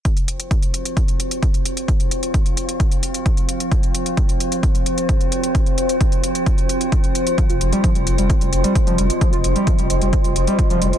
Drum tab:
HH |xxxxxxxxxxxxxxxx|xxxxxxxxxxxxxxxx|xxxxxxxxxxxxxxxx|xxxxxxxxxxxxxxxx|
BD |o---o---o---o---|o---o---o---o---|o---o---o---o---|o---o---o---o---|

HH |xxxxxxxxxxxxxxxx|xxxxxxxxxxxxxxxx|
BD |o---o---o---o---|o---o---o---o---|